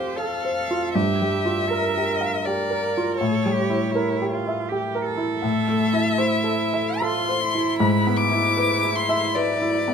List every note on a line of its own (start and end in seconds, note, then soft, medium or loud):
0.00 0.93 F2 soft
0.00 0.98 A3 soft
0.00 0.71 F4 soft
0.00 0.18 G4 soft
0.00 0.18 A4 soft
0.00 0.19 C5 medium
0.00 0.45 C5 soft
0.00 0.35 F5 soft
0.16 0.55 A4 soft
0.16 0.61 A4 soft
0.16 0.94 F5 medium
0.45 0.86 C5 soft
0.56 0.96 A4 soft
0.71 0.96 F4 soft
0.94 3.15 G2 soft
0.94 1.70 G4 medium
0.94 2.47 E5 medium
1.22 1.61 G3 soft
1.46 1.85 F4 soft
1.69 2.43 A#4 medium
1.69 2.10 A#4 soft
1.97 2.37 G4 soft
2.21 2.61 F5 soft
2.43 2.86 G4 soft
2.43 3.19 A#4 medium
2.43 3.18 D5 medium
2.70 3.10 A#4 soft
2.97 3.21 F4 soft
3.18 5.40 A2 soft
3.18 3.54 A4 medium
3.18 4.28 C#5 medium
3.46 3.84 G3 soft
3.52 3.93 G4 medium
3.70 4.09 E4 soft
3.91 4.30 E4 medium
3.95 4.34 A#4 soft
4.22 4.60 G4 soft
4.31 4.70 F4 soft
4.47 4.86 E5 soft
4.69 5.05 G4 medium
4.69 5.10 G4 soft
4.95 5.34 A#4 soft
5.06 6.19 A4 medium
5.18 5.43 E4 soft
5.42 7.75 A2 medium
5.42 7.04 E5 medium
5.68 6.08 A3 soft
5.93 6.35 E4 soft
6.18 7.03 E4 medium
6.18 6.63 C5 soft
6.44 6.90 A4 soft
6.74 7.18 E5 medium
7.01 7.42 F4 medium
7.01 7.44 A4 medium
7.01 7.78 C6 medium
7.29 7.69 C5 soft
7.41 9.94 E4 medium
7.55 7.80 E4 soft
7.79 9.94 G#2 medium
7.79 8.18 B5 medium
8.07 8.47 B3 soft
8.16 8.97 D6 medium
8.31 8.73 E4 medium
8.57 9.00 B4 medium
8.84 9.26 E4 soft
8.96 9.37 C6 medium
9.09 9.51 E5 medium
9.35 9.77 B4 medium
9.35 9.94 D5 medium
9.62 9.94 E4 soft
9.88 9.94 B3 soft